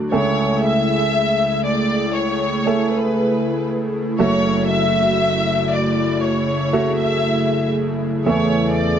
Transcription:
Already playing: F#3 A3 D4 D5
0.12 C#2 C#3 A3 E4 G#4 C#5 E5
0.63 E5
1.64 D5
2.15 C#5
2.66 A3 G#4 E5
2.92 B4
4.19 F#1 F#2 A3 F#4 C#5 E5
4.70 E5
5.71 D5
6.22 G#4 C#5
6.73 A3 F#4 E5
6.98 E5
8.26 E2 E3 A3 G#4 C#5 E5
8.77 D5

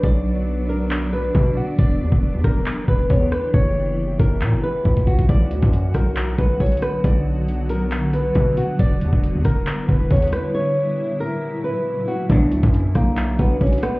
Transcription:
Already playing: F#3 B3 D4
0.03 B1 D5, kick
0.69 A#4
0.91 clap
1.13 B4
1.35 B2, kick
1.57 F#4
1.79 E1 E3 G4 D5, kick
2.01 E2
2.12 E1, kick
2.34 E2
2.44 E1 A#4, kick, cross-stick
2.66 clap
2.88 E1 B4, kick
3.10 E2 C#5, kick
3.32 B4, cross-stick
3.54 F#1 A#2 C#4 F#4 C#5, kick
4.19 F#1 A#4, kick
4.41 A#2, clap
4.53 F#1
4.63 B4
4.85 C#2, kick
4.97 kick
5.07 F#4, kick
5.19 kick
5.29 B1 D3 F#3 B3 D5, kick, closed hi-hat
5.51 D2, closed hi-hat
5.62 F#2, kick
5.73 closed hi-hat
5.94 B1 A#4, kick, cross-stick, closed hi-hat
6.16 clap, closed hi-hat
6.38 B1 B4, kick
6.60 B1 C#5, kick, closed hi-hat
6.66 closed hi-hat
6.72 closed hi-hat
6.77 closed hi-hat
6.82 B4, cross-stick, closed hi-hat
7.04 B1 D5, kick, closed hi-hat
7.48 closed hi-hat
7.69 A#4, closed hi-hat
7.92 clap, closed hi-hat
8.13 B4, closed hi-hat
8.35 B2, kick, closed hi-hat
8.57 F#4, closed hi-hat
8.79 E1 G3 E4 D5, kick, closed hi-hat
9.01 E2, closed hi-hat
9.13 E1, kick
9.24 closed hi-hat
9.35 E2
9.45 E1 A#4, kick, cross-stick, closed hi-hat
9.67 clap, closed hi-hat
9.89 E1 B4, kick
10.11 E2 C#5, kick, closed hi-hat
10.17 closed hi-hat
10.22 closed hi-hat
10.27 closed hi-hat
10.32 B4, cross-stick, closed hi-hat
10.54 A#2 C#3 F#3 C#5
11.20 A#4
11.64 B4
12.08 F#4
12.30 B1 D2 B2 F#3 D4 F#4 D5, kick, closed hi-hat
12.51 D2, closed hi-hat
12.63 F#2, kick
12.74 closed hi-hat
12.95 B1 A#3, kick, cross-stick, closed hi-hat
13.17 clap, closed hi-hat
13.39 B1 B3, kick
13.61 B1 C#4, kick, closed hi-hat
13.67 closed hi-hat
13.73 closed hi-hat
13.78 closed hi-hat
13.83 B3, cross-stick, closed hi-hat

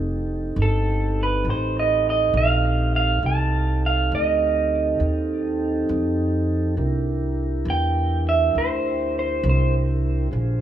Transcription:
Already playing: F1 C4 D#4 G4 A4
0.56 G1
0.62 A4
1.23 B4
1.45 A1
1.50 C5
1.79 D#5
2.10 D#5
2.34 A#1 F5
2.96 F5
3.23 C2 C4 D#4 G4 A4 A5
3.86 F5
4.12 D2 D#5
5.00 D#2
5.89 F2
6.77 C2 D4 E4 G4 A#4
7.65 E2
7.70 G5
8.29 E5
8.55 D2 C5
9.19 C5
9.43 C2
9.49 C5
10.31 A#1 D4 F4 G#4 C5

